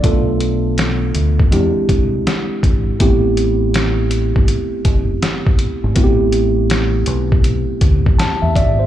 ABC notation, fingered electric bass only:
X:1
M:4/4
L:1/16
Q:"Swing 16ths" 1/4=81
K:Am
V:1 name="Fingered electric bass" clef=bass
B,,,6 D,,2 E,, z ^B,,,2 z2 ^G,,,2 | A,,,6- A,,, G,,, z2 ^F,,,2 z3 ^G,,, | A,,,6 B,,,4 D,,2 z E,, ^G,,,2 |]